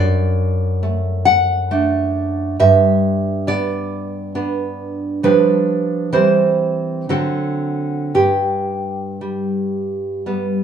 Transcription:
Already playing: F#2 D5
0.83 A3
1.25 F#5
1.71 A3 D4
2.59 G2 E5
3.47 B3 D5
4.35 B3 D4
5.23 F3 G3 D4 B4
6.12 E3 G3 C4 C5
7.09 D3 F#3 C4 A4
8.14 G2 G4
9.21 G3
10.26 G3 B3

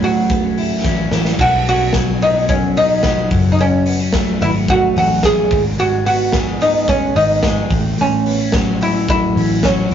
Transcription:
Already playing: A2 C#4
0.02 A2 F#3 F#4, open hi-hat
0.30 B3, kick, closed hi-hat
0.44 C#4
0.58 E4, open hi-hat
0.84 A1 C#4, kick, snare
1.11 A1 E4, snare
1.25 snare
1.39 B1 B2 F#4, kick, crash
1.66 C#4 F#4, open hi-hat
1.93 F#3, kick, snare, closed hi-hat
2.21 B3 D#4, open hi-hat
2.36 C#4
2.49 F#3 C#4, kick, closed hi-hat
2.77 C#2 B3 D#4, open hi-hat
2.90 C#4
3.03 F#3, kick, snare, closed hi-hat
3.31 F#1 F#2, kick, open hi-hat
3.52 D#4
3.58 F#2 C#4, closed hi-hat
3.86 B3, open hi-hat
4.00 C#4
4.13 A3, kick, snare, closed hi-hat
4.41 G#1 B3 E4, open hi-hat
4.54 C#4
4.68 A3 F#4, kick, closed hi-hat
4.96 A1 C#4 F#4, open hi-hat
5.23 A3 G#4, kick, snare, closed hi-hat
5.51 G#1 G#2, kick, open hi-hat
5.78 G#2 F#4, closed hi-hat
6.06 B3 F#4, open hi-hat
6.32 G#3, kick, snare, closed hi-hat
6.60 B3 D#4, open hi-hat
6.88 G#3 C#4, kick, closed hi-hat
7.15 G#1 B3 D#4, open hi-hat
7.43 G#3, kick, snare, closed hi-hat
7.70 A1 A2, kick, open hi-hat
7.98 A2 C#4, closed hi-hat
8.26 B3, open hi-hat
8.40 C#4
8.52 F#3, kick, snare, closed hi-hat
8.81 C#4 E4, open hi-hat
9.08 F#3 E4, kick, closed hi-hat
9.36 A1 C#4, open hi-hat
9.63 F#3 C#4, kick, snare, closed hi-hat
9.91 A1, open hi-hat

